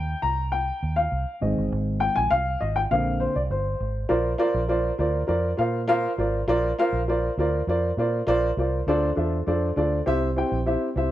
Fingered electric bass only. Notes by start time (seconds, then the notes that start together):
Already playing: D#2
0.23 C2
0.83 D#2
1.12 C2
1.42 G#1
1.58 G1
1.72 G#1
2.17 A#1
2.32 C2
2.62 G#1
2.91 A#1
3.36 C2
3.50 G1
3.80 G#1
4.10 A#1
4.54 A#1
4.99 D2
5.29 F2
5.58 A#2
6.18 G#1
6.47 A#1
6.93 A#1
7.38 D2
7.67 F2
7.97 A#2
8.27 A#1
8.57 C2
8.87 D2
9.17 E2
9.47 F2
9.77 D2
10.07 C2
10.52 A#1
10.96 C2